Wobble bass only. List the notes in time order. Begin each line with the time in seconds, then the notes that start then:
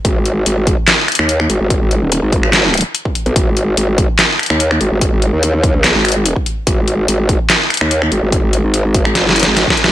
0.05 G#1
0.46 G#1
1.19 D#2
1.50 G#1
1.61 G#1
1.81 G#1
2.02 D#1
2.23 G#1
3.26 B1
3.36 G#1
3.77 G#1
4.50 D#2
4.81 G#1
4.92 G#1
5.12 G#1
5.33 D#2
5.95 G#1
6.67 G#1
7.08 G#1
7.81 D#2
8.12 G#1
8.23 G#1
8.43 G#1
8.64 G#1
9.21 G1
9.47 G#1
9.88 F#1